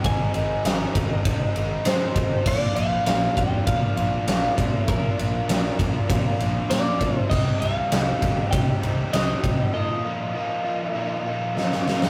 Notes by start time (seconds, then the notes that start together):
0.04 G#1 G#2 D#3 G#3 C4 D#4 G#5, kick, ride
0.34 G#1 G#3 C4 D#4, ride
0.65 G#1 D#3 G#3 C4 D#4, snare, ride
0.95 G#1 G#3 C4 D#4, kick, ride
1.24 G#1 G#2 D#3 G#3 C4 D#4, kick, ride
1.54 G#1 G#3 C4 D#4, ride
1.85 G#2 D#3 G#3 C4 D#4 C5, snare, ride
2.15 G#1 G#3 C4 D#4, kick, ride
2.45 A#1 A#2 F3 A#3 D4 F4 D5, kick, crash
2.74 A#1 A#3 D4 F4 F5, ride
3.06 A#1 F3 A#3 D4 F4 F5, snare, ride
3.37 F1 A#3 D4 F4 G5, kick, ride
3.66 A#1 A#2 F3 A#3 D4 F4 F5, kick, ride
3.96 A#1 A#3 D4 F4, ride
4.27 A#1 F3 A#3 D4 F4, snare, ride
4.57 A#1 A#3 D4 F4, kick, ride
4.87 A#1 A#2 F3 A#3 D4 F4 A#4, kick, ride
5.18 A#1 A#3 D4 F4, ride
5.48 A#1 F3 A#3 D4 F4, snare, ride
5.78 A#1 A#3 D4 F4, kick, ride
6.09 A#1 A#2 F3 A#3 D4 F4, kick, ride
6.39 A#1 A#3 D4 F4, ride
6.69 A#2 F3 A#3 D4 F4 D5, snare, ride
6.99 A#1 A#3 D4 F4, kick, ride
7.18 C5
7.30 C2 C3 G3 C4 D#4 G4 D#5, kick, crash
7.60 C2 C4 D#4 G4 F5, ride
7.92 C2 G3 C4 D#4 G4, snare, ride
8.22 G1 C4 D#4 G4, kick, snare, ride
8.51 C2 C3 G3 C4 G5, kick, ride
8.55 D#4 G4
8.82 C2 C4 D#4 G4, ride
9.13 C2 G3 C4 D#4 G4 D#5, snare, ride
9.43 C2 C4 D#4 G4, kick, ride
9.73 A#2 F3 A#3 D#4 F4 D#5
10.04 A#3 D#4 F4
10.35 F3 A#3 D#4 F4
10.65 A#3 D#4 F4
10.96 A#2 F3 A#3 D#4 F4
11.26 A#3 D#4 F4
11.56 F3 A#3 D#4 F4, snare
11.72 snare
11.85 A#3 D#4 F4, snare
12.02 snare